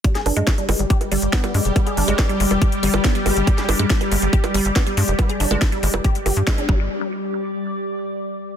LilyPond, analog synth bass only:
\new Staff \with { instrumentName = "Analog synth bass" } { \clef bass \time 4/4 \tempo 4 = 140 r8 g,,16 g,16 r8 g,,16 g,,16 r8 g,,16 g,,16 r8 g,16 f,,16 | r8 g,,16 g,,16 r8 g,,16 f,,16 r8 g,,16 g,,16 r8 g,,16 g,,16 | r8 g,,16 g,16 r8 g,,16 g,,16 r8 g,,16 g,,16 r8 g,16 f,,16 | r8 g,,16 g,,16 r8 g,,16 f,,16 r8 g,,16 g,16 r8 g,,8 |
r1 | }